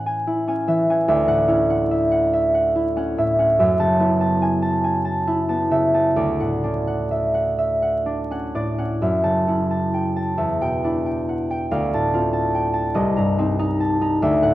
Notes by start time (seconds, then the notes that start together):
Already playing: A2 E3 C#4 E4 C#5 E5 F#5
0.06 G#5
0.27 E4
0.47 C#4 G#5
0.67 E3 E5
0.90 C#4 G#5
1.08 D2 E5
1.27 A2 F#5
1.48 C#4 E4
1.70 F#5
1.91 E5
2.11 F#5
2.33 E5
2.54 F#5
2.75 E4
2.96 C#4 F#5
3.18 A2 E5
3.39 C#4 F#5
3.59 F#2 E5
3.80 C#3 A5
4.00 B3 E4
4.20 A5
4.42 G#5
4.62 A5
4.84 G#5
5.05 A5
5.27 E4
5.49 B3 A5
5.71 C#3 E5
5.94 B3 A5
6.16 D2 D5
6.40 A2 F#5
6.63 C#4 D4
6.87 F#5
7.11 E5
7.34 F#5
7.58 E5
7.82 F#5
8.06 D4
8.31 C#4 F#5
8.55 A2 D5
8.78 C#4 F#5
9.02 F#2 E5
9.24 C#3 A5
9.47 C#4 E4
9.71 A5
9.94 G5
10.16 A5
10.38 E2 E5
10.61 B2 G5
10.84 D4 E4
11.06 G5
11.29 F#5
11.50 G5
11.71 D2 F5
11.94 A2 A5
12.14 C4 F4
12.33 A5
12.54 G5
12.73 A5
12.94 C2 D#5
13.16 G2 A#5
13.38 C4 D#4
13.59 D#4 A#5
13.80 A5
14.01 D#4 A#5
14.22 D2 E5
14.42 A2 F#5